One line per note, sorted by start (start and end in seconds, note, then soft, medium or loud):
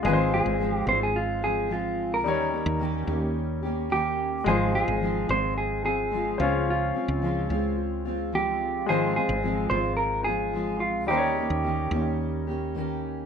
0.03 0.43 G#1 loud
0.03 0.32 G#2 medium
0.03 0.32 D#3 medium
0.03 0.33 F3 medium
0.03 2.20 G#3 medium
0.03 0.33 G#3 medium
0.03 0.32 C4 medium
0.03 2.21 F4 medium
0.03 0.30 F4 medium
0.03 0.33 G#4 loud
0.03 0.12 B4 medium
0.13 2.26 C5 medium
0.32 0.58 F3 soft
0.32 0.59 G#3 soft
0.32 0.60 C4 soft
0.32 0.60 F4 medium
0.32 0.75 G#4 loud
0.46 0.84 G#1 medium
0.59 0.87 F3 medium
0.59 0.88 G#3 medium
0.59 0.87 C4 medium
0.59 0.86 F4 medium
0.75 0.88 G4 loud
0.87 2.25 G#1 medium
0.87 1.44 F3 soft
0.87 1.43 G#3 soft
0.87 1.42 C4 medium
0.87 1.41 F4 medium
0.87 1.02 C5 loud
1.03 1.17 G#4 medium
1.16 1.44 F4 medium
1.42 1.68 F3 soft
1.42 1.69 G#3 soft
1.42 1.70 C4 soft
1.42 1.70 F4 medium
1.42 1.72 G#4 loud
1.69 2.24 F3 medium
1.69 2.25 G#3 medium
1.69 2.26 C4 medium
1.69 2.26 F4 medium
1.69 2.14 F4 medium
2.14 3.19 A#4 medium
2.24 2.63 D#2 loud
2.24 2.53 D#3 medium
2.24 4.42 G3 medium
2.24 2.53 A#3 medium
2.24 2.52 C#4 medium
2.24 4.43 D#4 medium
2.24 2.50 G4 medium
2.24 4.44 C#5 medium
2.51 2.80 A#3 soft
2.51 2.81 C#4 medium
2.51 2.80 G4 soft
2.66 3.04 D#2 loud
2.79 3.08 D#3 medium
2.79 3.08 A#3 medium
2.79 3.07 C#4 medium
2.79 3.06 G4 medium
3.07 4.42 D#2 medium
3.07 3.64 A#3 soft
3.07 3.63 C#4 medium
3.07 3.61 G4 medium
3.63 3.90 A#3 soft
3.63 3.91 C#4 medium
3.63 3.91 G4 medium
3.90 4.45 D#3 medium
3.90 4.46 A#3 medium
3.90 4.47 C#4 medium
3.90 4.47 G4 medium
4.44 4.84 G#1 medium
4.44 4.74 G#2 medium
4.44 4.74 D#3 medium
4.44 4.74 F3 medium
4.44 6.35 G#3 medium
4.44 4.74 G#3 medium
4.44 4.74 C4 medium
4.44 6.36 F4 medium
4.44 4.72 F4 medium
4.44 4.74 G#4 medium
4.48 6.37 C5 medium
4.74 5.00 F3 soft
4.74 5.01 G#3 soft
4.74 5.02 C4 soft
4.74 5.01 F4 medium
4.74 5.30 G#4 loud
4.88 5.26 G#1 medium
5.01 5.29 F3 medium
5.01 5.29 G#3 medium
5.01 5.28 C4 medium
5.01 5.27 F4 medium
5.28 6.36 G#1 medium
5.28 5.87 F3 soft
5.28 5.86 G#3 soft
5.28 5.85 C4 medium
5.28 5.84 F4 medium
5.28 5.57 C5 loud
5.58 5.84 G#4 medium
5.84 6.10 F3 soft
5.84 6.11 G#3 soft
5.84 6.12 C4 medium
5.84 6.12 F4 soft
5.84 6.42 G#4 medium
6.11 6.39 F3 medium
6.11 6.39 G#3 medium
6.11 6.39 C4 medium
6.11 6.38 F4 medium
6.38 6.91 C#2 medium
6.38 6.96 C#3 medium
6.38 7.22 F3 medium
6.38 6.97 G#3 medium
6.38 6.95 C4 medium
6.38 8.58 C#4 medium
6.38 6.94 F4 medium
6.38 8.57 F4 medium
6.38 6.69 F4 medium
6.38 8.56 C5 medium
6.70 7.76 F4 medium
6.94 7.22 G#3 soft
6.94 7.23 C4 medium
6.94 7.22 F4 medium
7.08 7.47 C#2 medium
7.22 7.50 F3 medium
7.22 7.51 G#3 medium
7.22 7.50 C4 medium
7.22 7.48 F4 medium
7.49 8.88 C#2 medium
7.49 8.08 G#3 medium
7.49 8.06 C4 medium
7.49 8.05 F4 medium
8.05 8.32 G#3 soft
8.05 8.34 C4 medium
8.05 8.33 F4 medium
8.32 8.89 F3 medium
8.32 8.89 G#3 medium
8.32 8.89 C4 medium
8.32 8.90 F4 medium
8.32 8.89 G4 medium
8.86 9.26 G#1 loud
8.86 9.16 G#2 medium
8.86 9.16 D#3 medium
8.86 9.17 F3 medium
8.86 11.04 G#3 medium
8.86 9.17 G#3 medium
8.86 9.16 C4 medium
8.86 11.05 F4 medium
8.86 9.15 F4 medium
8.86 9.15 G#4 loud
8.86 11.06 C5 medium
9.16 9.42 F3 soft
9.16 9.43 G#3 soft
9.16 9.44 C4 soft
9.16 9.44 F4 medium
9.16 9.68 G#4 loud
9.29 9.68 G#1 medium
9.43 9.71 F3 medium
9.43 9.72 G#3 medium
9.43 9.71 C4 medium
9.43 9.70 F4 medium
9.70 11.08 G#1 medium
9.70 10.27 G#3 soft
9.70 10.26 C4 soft
9.70 10.24 F4 medium
9.70 9.96 C5 loud
9.74 10.27 F3 soft
9.97 10.24 A#4 medium
10.24 10.53 G#3 soft
10.24 10.54 C4 soft
10.24 10.54 F4 medium
10.24 10.80 G#4 loud
10.29 10.52 F3 soft
10.53 11.08 F3 medium
10.53 11.09 G#3 medium
10.53 11.10 C4 medium
10.53 11.10 F4 medium
10.80 11.08 F4 medium
11.07 11.47 D#2 loud
11.07 11.37 D#3 medium
11.07 13.25 G3 medium
11.07 11.37 A#3 medium
11.07 11.36 C#4 medium
11.07 13.26 D#4 medium
11.07 12.15 G4 medium
11.07 11.35 G4 medium
11.07 11.17 C5 medium
11.17 13.26 C#5 medium
11.36 11.63 A#3 soft
11.36 11.65 C#4 medium
11.36 11.64 G4 medium
11.50 11.89 D#2 medium
11.64 11.92 D#3 medium
11.64 11.92 A#3 medium
11.64 11.91 C#4 medium
11.64 11.90 G4 medium
11.91 13.26 D#2 loud
11.91 12.48 A#3 soft
11.91 12.48 C#4 medium
11.91 12.46 G4 medium
12.47 12.74 A#3 soft
12.47 12.76 C#4 medium
12.47 12.75 G4 medium
12.75 13.26 D#3 medium
12.75 13.26 A#3 medium
12.75 13.26 C#4 medium
12.75 13.26 G4 medium